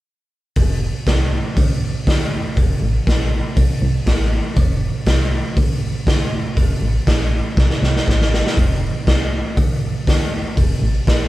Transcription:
0.56 0.92 F1 medium
0.56 kick loud
0.56 open hi-hat medium
1.07 1.42 C2 medium
1.07 kick loud
1.07 snare loud
1.07 open hi-hat medium
1.57 1.92 D2 medium
1.57 kick loud
1.57 open hi-hat medium
2.07 2.42 D2 loud
2.07 kick loud
2.07 snare loud
2.07 open hi-hat medium
2.57 2.74 F1 medium
2.57 kick loud
2.57 open hi-hat medium
2.82 3.00 A1 medium
3.07 3.42 A#1 medium
3.07 kick loud
3.07 snare medium
3.07 open hi-hat medium
3.57 3.74 C2 medium
3.57 kick loud
3.57 open hi-hat medium
3.82 3.99 C2 medium
4.06 4.41 A1 medium
4.06 kick loud
4.06 snare loud
4.06 open hi-hat medium
4.56 4.91 F1 loud
4.56 kick loud
4.56 open hi-hat medium
5.06 5.42 C2 loud
5.06 kick medium
5.06 snare loud
5.06 open hi-hat medium
5.57 5.92 D2 medium
5.57 kick loud
5.57 open hi-hat medium
6.07 6.41 D2 medium
6.07 kick loud
6.07 snare loud
6.07 open hi-hat medium
6.57 6.74 F1 medium
6.57 kick loud
6.57 open hi-hat medium
6.82 6.99 A1 medium
7.07 7.42 A#1 medium
7.07 kick loud
7.07 snare medium
7.07 open hi-hat soft
7.57 7.74 C2 medium
7.57 kick loud
7.57 snare medium
7.71 snare soft
7.82 7.99 C2 medium
7.82 snare medium
7.97 snare medium
8.08 8.42 A1 medium
8.08 kick loud
8.08 snare medium
8.22 snare medium
8.34 snare medium
8.47 snare medium
8.57 8.92 F1 medium
8.57 kick loud
8.57 open hi-hat medium
9.07 9.42 C2 medium
9.07 kick medium
9.07 snare loud
9.07 open hi-hat soft
9.57 9.92 D2 medium
9.57 kick loud
9.57 open hi-hat medium
10.07 10.42 D2 medium
10.07 kick loud
10.07 snare loud
10.07 open hi-hat medium
10.57 10.75 F1 medium
10.57 kick loud
10.57 open hi-hat medium
10.82 10.99 A1 medium
11.07 11.28 A#1 medium
11.07 kick loud
11.07 snare loud
11.07 open hi-hat medium

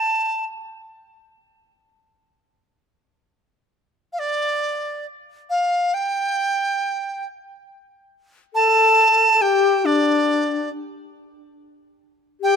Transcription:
0.00 0.45 A5 medium
4.13 4.21 F5 medium
4.19 5.06 D5 medium
5.50 5.95 F5 medium
5.94 7.25 G5 medium
8.54 9.35 A4 medium
8.54 9.43 A5 medium
9.35 9.43 A4 medium
9.41 9.86 G4 medium
9.41 9.87 G5 medium
9.85 10.69 D4 medium
9.85 10.70 D5 medium
12.41 12.56 G4 medium
12.41 12.56 G5 medium

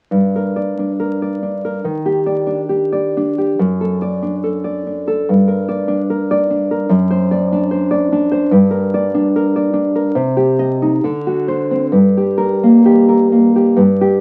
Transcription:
0.11 1.80 G2 soft
0.36 0.99 A#4 soft
0.56 0.91 D5 soft
0.79 1.41 D4 soft
1.00 1.64 A#4 soft
1.22 1.84 D5 soft
1.43 1.84 D4 soft
1.65 1.84 A#4 soft
1.84 3.53 D#3 soft
2.06 2.68 G4 soft
2.26 2.60 D5 soft
2.47 3.16 D4 soft
2.69 3.37 G4 soft
2.93 3.58 D5 soft
3.17 3.59 D4 soft
3.38 3.58 G4 soft
3.59 5.24 F#2 medium
3.81 4.01 A4 soft
4.02 4.35 D5 medium
4.22 4.85 D4 soft
4.44 5.06 A4 soft
4.64 5.27 D5 soft
4.87 5.27 D4 soft
5.08 5.27 A4 soft
5.29 6.89 G2 medium
5.48 6.09 A#4 soft
5.68 6.01 D5 medium
5.88 6.49 D4 soft
6.10 6.70 A#4 soft
6.31 6.92 D5 soft
6.50 6.91 D4 soft
6.71 6.91 A#4 soft
6.89 8.46 F#2 medium
7.11 7.70 C5 medium
7.31 7.64 D5 medium
7.52 8.11 D4 soft
7.71 8.30 C5 soft
7.91 8.51 D5 medium
8.12 8.52 D4 soft
8.32 8.52 C5 medium
8.51 10.11 G2 medium
8.71 9.35 A#4 medium
8.94 9.27 D5 medium
9.14 9.72 D4 medium
9.36 9.94 A#4 soft
9.56 10.16 D5 medium
9.73 10.14 D4 soft
9.95 10.15 A#4 soft
10.15 10.99 C3 medium
10.37 11.02 G4 medium
10.59 10.93 D#5 medium
10.82 11.03 D#4 soft
11.04 11.92 D3 medium
11.27 11.95 F#4 soft
11.48 11.85 C5 medium
11.71 11.94 C4 soft
11.92 13.75 G2 medium
12.17 12.84 G4 soft
12.38 12.77 A#4 soft
12.63 13.31 A#3 soft
12.86 13.55 G4 soft
13.09 13.81 A#4 soft
13.32 13.81 A#3 soft
13.56 13.81 G4 soft
13.76 14.21 G2 medium
14.01 14.21 G4 medium

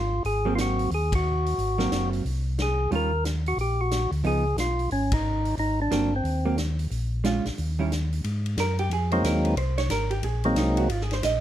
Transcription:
0.00 0.21 G#1 medium
0.00 0.23 F4 medium
0.24 0.88 G#1 medium
0.24 0.54 G#4 loud
0.24 open hi-hat soft
0.45 0.89 F#3 medium
0.45 0.89 A#3 medium
0.45 0.89 C4 medium
0.55 0.59 F4 medium
0.55 snare medium
0.55 closed hi-hat soft
0.61 0.90 F#4 medium
0.79 open hi-hat soft
0.91 1.54 D#2 medium
0.91 1.14 G#4 medium
0.91 open hi-hat soft
1.12 2.10 F#4 medium
1.12 kick medium
1.12 ride medium
1.46 open hi-hat soft
1.58 1.89 G#1 medium
1.58 open hi-hat soft
1.78 2.22 F#3 medium
1.78 2.22 A#3 medium
1.78 2.22 C4 medium
1.78 snare medium
1.91 2.22 F#1 medium
1.91 snare medium
1.91 closed hi-hat soft
2.13 open hi-hat soft
2.25 2.88 C2 medium
2.25 open hi-hat soft
2.59 2.91 G#4 medium
2.59 snare medium
2.59 closed hi-hat soft
2.91 3.54 D#2 medium
2.91 3.10 D#3 medium
2.91 3.10 G3 medium
2.91 3.10 C#4 medium
2.91 3.11 F4 medium
2.91 open hi-hat soft
2.96 3.24 A#4 loud
3.25 snare medium
3.25 closed hi-hat soft
3.46 3.58 F#4 medium
3.46 open hi-hat soft
3.57 4.08 A#1 medium
3.57 open hi-hat soft
3.61 3.81 G4 medium
3.81 4.11 F#4 medium
3.91 snare medium
3.91 closed hi-hat soft
4.12 4.23 D2 medium
4.12 open hi-hat soft
4.24 4.55 C#2 medium
4.24 4.43 F3 soft
4.24 4.43 B3 medium
4.24 4.43 D#4 medium
4.24 4.57 G#4 loud
4.24 open hi-hat soft
4.56 4.88 B1 medium
4.56 4.90 F4 medium
4.56 snare medium
4.56 closed hi-hat soft
4.79 open hi-hat soft
4.91 5.54 G#1 medium
4.91 5.13 C#4 medium
4.91 open hi-hat soft
5.12 5.55 D#4 medium
5.12 kick medium
5.12 ride medium
5.45 open hi-hat soft
5.58 5.89 G#1 medium
5.58 5.80 D#4 medium
5.58 open hi-hat soft
5.82 6.14 D4 medium
5.91 6.22 G1 medium
5.91 6.10 F#3 medium
5.91 6.10 A#3 medium
5.91 6.10 C4 medium
5.91 snare medium
5.91 closed hi-hat soft
6.16 6.57 C4 medium
6.24 6.87 D#2 medium
6.24 open hi-hat soft
6.45 6.56 F#3 soft
6.45 6.57 A#3 medium
6.45 6.57 C4 soft
6.58 snare medium
6.58 closed hi-hat soft
6.79 open hi-hat soft
6.91 7.41 A#1 medium
6.91 open hi-hat soft
7.24 7.43 G#3 medium
7.24 7.43 C#4 medium
7.24 7.44 F4 medium
7.24 snare medium
7.24 closed hi-hat soft
7.45 7.51 A#1 soft
7.45 snare soft
7.45 open hi-hat soft
7.58 8.21 D#2 medium
7.58 open hi-hat soft
7.79 7.90 D#3 medium
7.79 7.90 G3 medium
7.79 7.90 C#4 medium
7.79 7.91 E4 medium
7.92 snare medium
7.92 closed hi-hat soft
8.12 open hi-hat soft
8.24 8.57 G#2 medium
8.24 ride medium
8.46 ride soft
8.57 8.90 F#2 medium
8.57 8.79 A#4 medium
8.57 snare medium
8.57 hi-hat pedal medium
8.57 ride medium
8.79 8.91 G4 medium
8.79 ride soft
8.90 9.23 F2 medium
8.90 9.12 G#4 medium
8.90 ride medium
9.11 9.55 F#3 medium
9.11 9.55 G#3 medium
9.11 9.56 A#3 medium
9.11 9.56 C4 medium
9.11 9.55 D#4 medium
9.11 9.24 C5 medium
9.11 ride soft
9.23 9.56 D#2 medium
9.23 9.45 A#4 medium
9.23 snare medium
9.23 hi-hat pedal medium
9.23 ride medium
9.45 9.57 B4 medium
9.45 ride soft
9.56 9.89 C2 medium
9.56 9.77 C5 medium
9.56 ride medium
9.78 9.90 C#5 loud
9.78 snare soft
9.78 ride soft
9.89 10.22 G#1 medium
9.89 10.11 A#4 medium
9.89 snare medium
9.89 hi-hat pedal soft
9.89 ride medium
10.11 10.23 G4 medium
10.11 ride soft
10.23 10.56 A#1 medium
10.23 10.44 G#4 medium
10.23 ride medium
10.44 10.88 F#3 medium
10.44 10.88 G#3 medium
10.44 10.88 A#3 medium
10.44 10.88 C4 medium
10.44 10.57 C4 soft
10.44 10.88 D#4 medium
10.44 ride soft
10.56 10.89 C2 medium
10.56 10.78 D#4 medium
10.56 snare medium
10.56 hi-hat pedal medium
10.56 ride medium
10.77 10.91 F#4 medium
10.77 ride medium
10.89 11.22 G#1 medium
10.89 11.03 F4 medium
10.89 ride medium
11.01 11.13 G#4 medium
11.01 snare soft
11.11 11.24 C5 medium
11.11 snare soft
11.11 ride soft
11.23 11.40 A#1 medium
11.23 11.40 D#5 loud
11.23 snare medium
11.23 hi-hat pedal medium
11.23 ride medium

